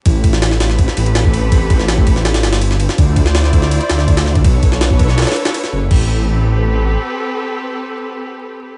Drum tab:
CC |--------------------------------|--------------------------------|--------------------------------|--------------------------------|
RD |x---x---x---x---x---x-x-x---x---|x---x---x---x---x-x-x-x-x---x---|x---x---x---x---x-x-x---x-x---x-|x---x---x---x---xxxxx---x-------|
SD |------o-o-o-o-o---o-----o-------|------o-o-----o-o-o-o-o---o---o-|------o-o-o---o-----o-o---o-o---|------o-o-----o-oooo--o---o-----|
BD |o---o-----------o---------o-----|o---o-----o-o-------------------|o---o-------o-----------o-----o-|o---o-----o-o-------------------|

CC |x-------------------------------|--------------------------------|
RD |--------------------------------|--------------------------------|
SD |--------------------------------|--------------------------------|
BD |o-------------------------------|--------------------------------|